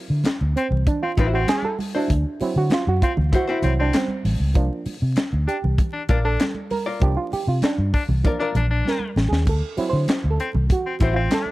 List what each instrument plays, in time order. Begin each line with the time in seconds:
Already playing: clav F#3 C4 E4
0.10 fingered electric bass D3
0.24 snare, clap, closed hi-hat, high conga
0.41 fingered electric bass D2
0.56 clav C4, baritone saxophone C4, closed hi-hat
0.71 fingered electric bass C2, low conga
0.87 clav D4, kick, closed hi-hat, muted conga, low conga
1.03 baritone saxophone C4, clav F4
1.17 fingered electric bass A1, baritone saxophone C4, hollow-body jazz guitar E4 F#4 C5, kick, closed hi-hat, muted conga
1.34 baritone saxophone C4, clav F#4
1.47 clav G#4, snare, clap, closed hi-hat, high conga
1.62 clav A4, high conga
1.79 open hi-hat, high conga
1.95 clav D4, hollow-body jazz guitar E4 F#4 C5
2.08 fingered electric bass D2, kick, closed hi-hat, muted conga
2.41 clav F#3 C4 E4, muted fingered electric bass stroke, open hi-hat
2.56 fingered electric bass D3, clav F#4
2.70 clav F4, snare, clap, closed hi-hat, high conga
2.87 fingered electric bass F#2, clav F#4
3.02 baritone saxophone C4, clav F4, kick, closed hi-hat
3.17 fingered electric bass D2, low conga
3.32 hollow-body jazz guitar E4 F#4 C5, clav F#4, kick, closed hi-hat, muted conga, low conga
3.47 baritone saxophone C4, hollow-body jazz guitar E4 F#4 C5
3.62 fingered electric bass C2, clav F#3 C4 E4, baritone saxophone C4, closed hi-hat, muted conga, low conga
3.79 baritone saxophone C4, clav D4
3.93 clav C4, snare, clap, closed hi-hat, high conga
4.08 high conga
4.25 fingered electric bass A1, open hi-hat, high conga
4.40 fingered electric bass C#2
4.54 fingered electric bass C2, clav F3 A#3 D4, kick, closed hi-hat, muted conga
4.86 muted fingered electric bass stroke, open hi-hat, muted conga
5.02 fingered electric bass C3
5.16 snare, clap, closed hi-hat, high conga
5.33 fingered electric bass D2
5.47 baritone saxophone D4, clav G4, closed hi-hat
5.64 fingered electric bass C2, low conga
5.78 kick, closed hi-hat, muted conga, low conga
5.93 baritone saxophone D4
6.09 fingered electric bass A#1, baritone saxophone D4, hollow-body jazz guitar F4 A#4 D5, kick, closed hi-hat, muted conga
6.25 baritone saxophone D4, clav A4
6.40 snare, clap, closed hi-hat, high conga
6.55 high conga
6.71 clav A#4, open hi-hat, high conga
6.86 hollow-body jazz guitar F4 A#4 D5
7.00 fingered electric bass C2, clav F3 A#3 D4 G4, kick, closed hi-hat, muted conga
7.17 clav F4
7.32 clav G4, muted fingered electric bass stroke, open hi-hat, muted conga
7.47 fingered electric bass C3, clav F4
7.62 clav D4, snare, clap, closed hi-hat, high conga
7.78 fingered electric bass G2
7.94 baritone saxophone D4, kick, open hi-hat
8.09 fingered electric bass C2, low conga
8.24 clav F3 A#3 D4, hollow-body jazz guitar F4 A#4 D5, kick, closed hi-hat, muted conga, low conga
8.39 baritone saxophone D4, hollow-body jazz guitar F4 A#4 D5
8.55 fingered electric bass A#1, baritone saxophone D4, closed hi-hat, muted conga, low conga
8.71 baritone saxophone D4
8.85 clav A#4, snare, high conga
9.00 high conga
9.16 fingered electric bass A1, snare, high conga
9.29 fingered electric bass D#2, clav G#4
9.33 snare
9.45 fingered electric bass D2, clav A4, kick, crash, muted conga
9.77 clav F#3 C4 E4, muted fingered electric bass stroke, open hi-hat, muted conga
9.90 fingered electric bass D3, clav C5
10.08 snare, clap, closed hi-hat, high conga
10.24 fingered electric bass D2
10.31 clav A4
10.40 baritone saxophone C4, closed hi-hat
10.54 fingered electric bass C2, low conga
10.70 clav F#4, kick, closed hi-hat, muted conga, low conga
10.86 baritone saxophone C4
11.00 fingered electric bass A1, baritone saxophone C4, hollow-body jazz guitar E4 F#4 C5, kick, closed hi-hat, muted conga
11.13 baritone saxophone C4, clav F4
11.30 clav A4, snare, clap, closed hi-hat, high conga
11.46 high conga